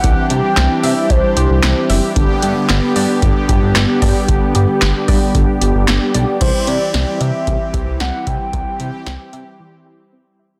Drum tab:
CC |--------|--------|--------|x-------|
HH |xxxoxxxo|xxxoxxxo|xxxoxxxx|xxxxxxxx|
CP |--x---x-|--x---x-|--x---x-|--------|
SD |--o---o-|--o---o-|--o---o-|--o---o-|
BD |o---o---|o---oo-o|o--oo---|o---oo-o|

CC |--------|
HH |xxxx----|
CP |--------|
SD |--o-----|
BD |o-------|